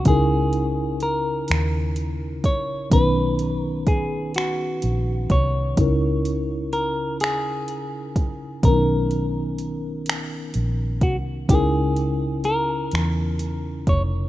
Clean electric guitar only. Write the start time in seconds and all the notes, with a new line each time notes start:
0.08 G#4
1.03 A#4
2.46 C#5
2.93 B4
3.59 A#4
3.88 G#4
4.36 F#4
5.32 C#5
6.73 A#4
7.21 G#4
8.65 A#4
11.03 F#4
11.51 G#4
12.45 A#4
13.89 C#5